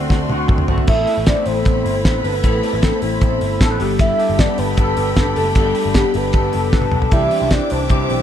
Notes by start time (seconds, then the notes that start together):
Already playing: D3 A3 C4 D4 F#4 D5 F#5 C6
0.09 D2 A3 C4 D4 F#4, kick, snare
0.29 D2 D3 A3 C4 F#4, high tom
0.48 D2 C4 D4 F#4, kick, mid tom
0.58 mid tom
0.68 G1 D3 A3 C4 F#4, floor tom
0.78 floor tom
0.87 A1 A3 B3 C4 E4 A4 E5 B5, kick, crash
1.07 D4, open hi-hat
1.17 A1 E4
1.26 B3 C4 E4 A4 D5, kick, snare, hi-hat pedal, ride
1.46 A1 E4 C5, open hi-hat
1.65 A1 B3 C4 E4 A4 C5, kick, hi-hat pedal, ride
1.85 G1 E4, open hi-hat
2.04 A1 B3 C4 E4 A4 B4, kick, snare, hi-hat pedal, ride
2.24 G1 D4 B4, open hi-hat
2.34 E4
2.43 A1 A3 B3 C4 E4 A4, kick, hi-hat pedal, ride
2.63 D4, open hi-hat
2.73 A1 E4
2.82 B3 C4 E4 A4, kick, snare, hi-hat pedal, ride
3.01 A1 E4 C5, open hi-hat
3.21 A1 B3 C4 E4 A4, kick, hi-hat pedal, ride
3.41 G1 E4, open hi-hat
3.61 A1 B3 C4 E4 A4, kick, snare, hi-hat pedal, ride
3.70 B4
3.80 G1 G3 B3 D4 G4 A4 G5 B5, open hi-hat
3.99 G3 E5, kick, hi-hat pedal, ride
4.19 D4, open hi-hat
4.30 G1
4.39 B3 D4 G4 A4 D5, kick, snare, hi-hat pedal, ride
4.58 G1 D4 B4, open hi-hat
4.77 G1 B3 D4 G4 A4 B4, kick, hi-hat pedal, ride
4.97 G1 D4, open hi-hat
5.16 G1 B3 D4 G4 A4, kick, snare, hi-hat pedal, ride
5.36 F#1 D4 A4, open hi-hat
5.55 G1 G3 B3 D4 G4 A4, kick, hi-hat pedal, ride
5.75 D4, open hi-hat
5.86 G1
5.94 B3 D4 G4 A4, kick, snare, hi-hat pedal, ride
6.14 G1 D4 B4, open hi-hat
6.33 G1 B3 D4 G4 A4, kick, hi-hat pedal, ride
6.53 F#1 D4, open hi-hat
6.72 G1 B3 D4 G4 A4 B4, kick, snare
6.82 high tom
6.92 B1 D4, mid tom
7.02 floor tom
7.11 C2 E3 G3 C4 D4 E4 G4 E5 D6, kick, hi-hat pedal, ride
7.31 C4, open hi-hat
7.40 C2 G3 D4 G4
7.50 C4 D4 E4 G4 D5, kick, snare, hi-hat pedal, ride
7.70 C2 D4 C5, open hi-hat
7.80 G3 D4 G4
7.89 C2 C4 D4 E4 G4 C5, kick, hi-hat pedal, ride
8.09 B1 E3 G3 C4 D4 G4, open hi-hat